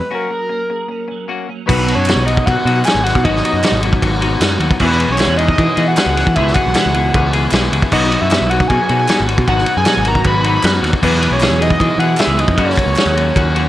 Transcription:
Already playing: F#3 G#3 B3 G#4 B4
0.11 F#3 A#3 C#4 F#4
0.15 A#4
0.31 A#3 C#4 G#4
0.49 A#3 C#4
0.70 A#3 C#4 G#4
0.88 A#3 C#4
1.08 F#3 A#3 C#4
1.28 A#3 C#4 F#4
1.49 A#3 C#4
1.66 B1 B2 F#3 B3 D#4 F#4 B4, kick, crash
1.86 B3 D#4 F#4, ride
1.95 F#2 C#4 C#5
2.06 B2 F#3 B3 D#4 F#4, clap, ride
2.10 snare
2.16 B1
2.26 F#3 B3 D#4 F#4 D#5, ride
2.37 kick
2.45 B2 F#3 B3 D#4 F#4 F#5, kick, ride
2.65 B2 F#3 B3 D#4 F#4, ride
2.75 F#4 F#5
2.85 F#3 B3 D#4 F#4 G#4 G#5, snare, clap, ride
2.95 G#1
3.04 B3 D#4 F#4 F#5, snare, ride
3.15 B2, kick
3.23 G#1 B2 F#3 B3 D#4 F#4 D#5, kick, ride
3.36 snare
3.44 B3 D#4 F#4 D#5, ride
3.53 F#2
3.62 B2 F#3 B3 D#4 F#4, snare, clap, ride
3.72 G#1
3.82 F#3 B3 D#4 F#4, ride
3.93 kick
4.01 G#1 F#3 B3 D#4 F#4, kick, ride
4.21 F#3 B3 D#4 F#4, ride
4.41 F#2 F#3 B3 D#4 F#4, snare, clap, ride
4.60 D#2 B3 D#4 F#4, ride
4.71 kick
4.78 E2 B2 E3 G#3 B3 E4 F#4 G#4, kick, crash
4.83 B3 B4
4.91 snare
4.98 E3 G#3 B3 E4 F#4 G#4, ride
5.09 B1 C#4 C#5
5.18 E2 B2 E3 G#3 B3 E4 G#4, snare, clap, ride
5.22 F#4
5.28 E2
5.37 E3 B3 D#4 E4 G#4 D#5, ride
5.49 kick
5.57 E3 B3 E4 G#4, kick, ride
5.76 E3 G#3 B3 E4 F#4 G#4, ride
5.88 F#4 F#5
5.96 E3 G#3 B3 E4 F#4 G#4 F#5, snare, clap, ride
6.06 C#2
6.16 E3 G#3 B3 E4 F#4 G#4, snare, ride
6.27 E3, kick
6.35 C#2 E2 B2 E3 G#3 B3 E4 F#4 G#4 E5, kick, ride
6.47 snare
6.54 G#3 B3 E4 F#4 G#4 F#5, kick, clap, ride
6.58 E3
6.67 B1
6.74 E2 B2 E3 G#3 B3 E4 G#4, snare, clap, ride
6.78 F#4
6.86 C#2
6.94 E3 B3 E4 G#4, ride
7.14 C#2 E3 B3 E4 G#4, kick, ride
7.33 E3 G#3 B3 E4 F#4 G#4, ride
7.51 B1 E3 G#3 B3 E4 G#4, snare, clap, ride
7.56 F#4
7.72 C#2 E3 G#3 B3 E4 F#4 G#4, ride
7.82 kick
7.91 B1 B2 F#3 B3 D#4 F#4 D#5, kick, crash
8.03 snare
8.11 B3 D#4 F#4, ride
8.21 F#2 E4 E5
8.30 B2 F#3 B3 D#4 F#4, snare, clap, ride
8.41 B1
8.50 F#3 B3 D#4 F#4 F#5, ride
8.60 kick
8.68 B2 F#3 B3 D#4 G#4 G#5, kick, ride
8.72 F#4
8.89 B2 F#3 B3 D#4 F#4, ride
8.99 G#4 G#5
9.08 F#3 B3 D#4 F#4, snare, clap, ride
9.20 G#1
9.28 B3 D#4 F#4, ride
9.38 B2, kick
9.46 G#1 B2 F#3 B3 D#4 F#4 F#5, kick, ride
9.50 F#4
9.58 snare
9.66 B3 D#4 F#4, ride
9.77 F#2 G#4 G#5
9.85 B2 F#3 B3 D#4 F#4, snare, clap, ride
9.97 G#1
10.04 F#3 B3 D#4 F#4 A#4, ride
10.08 A#5
10.15 kick
10.24 G#1 F#3 B3 D#4 F#4 B4 B5, kick, ride
10.44 F#3 B3 D#4 F#4, ride
10.56 B4 B5
10.62 F#2 F#3 B3 D#4 F#4, snare, clap, ride
10.82 D#2 B3 D#4 F#4, snare, ride
10.93 kick
11.01 E2 B2 E3 F#3 G#3 B3 E4 G#4 B4, kick, crash
11.15 snare
11.21 G#3 B3 E4 G#4, ride
11.25 F#3
11.31 B1 C#5
11.35 C#4
11.40 E2 B2 E3 F#3 G#3 B3 E4 G#4, snare, clap, ride
11.50 E2
11.59 E3 B3 D#4 E4 G#4 D#5, ride
11.70 kick
11.79 E3 B3 E4 G#4, kick, ride
11.98 E3 G#3 B3 E4 F#4 G#4 F#5, ride
12.03 F#3
12.17 E3 F#3 G#3 B3 E4 G#4 E5, snare, clap, ride
12.27 C#2
12.37 F#3 G#3 B3 D#4 E4 G#4 D#5, ride
12.48 F2, kick
12.56 F#2 F#3 A#3 C#4 F#4 G#4 C#5, kick, ride
12.70 snare
12.76 F#4 G#4, kick, clap, ride
12.80 A#3 C#4
12.86 C#2
12.96 F#3 A#3 C#4 F#4 G#4, snare, clap, ride
13.06 D#2
13.16 A#3 C#4 F#4, ride
13.35 D#2 A#3 C#4 F#4, kick, ride
13.55 A#3 C#4 F#4 G#4, ride

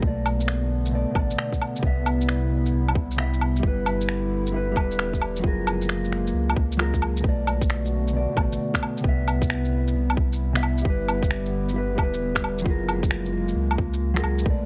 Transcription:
0.00 B1 B2 D3 A3 B3, kick
0.07 D5
0.26 low woodblock, shaker
0.40 shaker
0.48 finger snap
0.86 shaker
0.91 B2 A3 D5
1.11 A1 B2, kick
1.15 A3 D5, low woodblock
1.31 shaker
1.38 finger snap
1.53 kick, shaker
1.62 low woodblock
1.76 C3, shaker
1.82 C2 C3 G3 B3 E4, kick
1.87 E5
2.06 low woodblock, shaker
2.21 shaker
2.29 finger snap
2.66 shaker
2.73 C2
2.88 low woodblock
2.95 kick
3.11 shaker
3.16 C3 B3, finger snap
3.20 E5
3.34 shaker
3.41 low woodblock
3.56 G3, shaker
3.63 G1 D3 E4, kick
3.68 B4
3.86 low woodblock, shaker
4.01 shaker
4.09 finger snap
4.47 shaker
4.52 G3 E4
4.56 B4
4.72 G3
4.76 E1 E4, kick, low woodblock
4.80 B4
4.92 shaker
4.99 finger snap
5.13 kick, shaker
5.22 low woodblock
5.36 F#3, shaker
5.42 F#1 G#3 A#3 F4 G#4, kick
5.47 A#4
5.67 low woodblock, shaker
5.82 shaker
5.89 finger snap
6.05 shaker
6.12 finger snap
6.27 shaker
6.34 C#2
6.50 low woodblock
6.56 C#2, kick
6.72 shaker
6.77 F#3 F4 G#4 A#4, finger snap
6.94 kick, shaker
7.02 C#2, low woodblock
7.17 B2, shaker
7.24 B1 D3 A3 B3 F#4, kick
7.29 D5
7.47 low woodblock, shaker
7.61 kick, shaker
7.70 finger snap
7.85 shaker
8.08 shaker
8.13 B2 A3 D5
8.33 A1 B2 A3, kick
8.37 D5, low woodblock
8.53 shaker
8.74 finger snap, kick, shaker
8.83 low woodblock
8.97 C3, shaker
9.04 C2 C3 G3 B3 E4, kick
9.09 E5
9.28 low woodblock, shaker
9.42 kick, shaker
9.50 finger snap
9.65 shaker
9.88 shaker
9.94 C2
10.10 low woodblock
10.17 kick
10.33 shaker
10.53 C3 B3 E5, finger snap, shaker
10.63 low woodblock
10.78 G3, shaker
10.85 G1 D3 B3 E4, kick
10.90 B4
11.08 low woodblock, shaker
11.23 kick, shaker
11.31 finger snap
11.46 shaker
11.69 shaker
11.74 G3 E4
11.78 B4
11.95 E1 G3 E4, kick, low woodblock
12.03 B4
12.14 shaker
12.35 finger snap, kick, shaker
12.44 low woodblock
12.58 F#3, shaker
12.64 F#1 G#3 A#3 F4 G#4, kick
12.70 A#4
12.89 low woodblock, shaker
13.03 kick, shaker
13.11 finger snap
13.26 shaker
13.48 shaker
13.56 C#2
13.71 low woodblock
13.78 C#2, kick
13.94 shaker
14.14 F#3 F4 G#4, finger snap, shaker
14.18 A#4
14.24 C#2, low woodblock
14.38 B2, shaker
14.46 B1 D3 A3 B3 F#5, kick
14.50 D5

